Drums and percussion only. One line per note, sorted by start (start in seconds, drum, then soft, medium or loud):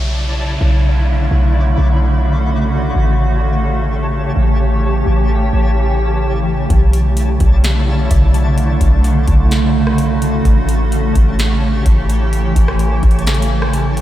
6.70 kick loud
6.70 closed hi-hat medium
6.93 closed hi-hat medium
7.17 closed hi-hat medium
7.40 kick loud
7.40 closed hi-hat medium
7.64 snare loud
7.64 closed hi-hat medium
8.11 kick loud
8.11 closed hi-hat medium
8.34 closed hi-hat medium
8.58 closed hi-hat medium
8.81 kick loud
8.81 closed hi-hat medium
9.04 closed hi-hat medium
9.28 kick loud
9.28 closed hi-hat medium
9.51 snare loud
9.51 closed hi-hat medium
9.87 cross-stick medium
9.98 closed hi-hat medium
10.22 closed hi-hat medium
10.45 kick loud
10.45 closed hi-hat medium
10.69 closed hi-hat medium
10.92 closed hi-hat medium
11.15 kick loud
11.15 closed hi-hat medium
11.39 snare loud
11.39 closed hi-hat medium
11.86 kick loud
11.86 closed hi-hat medium
12.10 closed hi-hat medium
12.33 closed hi-hat medium
12.56 kick medium
12.56 closed hi-hat medium
12.68 cross-stick loud
12.79 closed hi-hat medium
13.03 kick medium
13.03 closed hi-hat soft
13.11 closed hi-hat soft
13.19 closed hi-hat medium
13.27 snare loud
13.27 closed hi-hat medium
13.34 closed hi-hat medium
13.42 closed hi-hat medium
13.62 cross-stick medium
13.73 closed hi-hat medium
13.97 closed hi-hat medium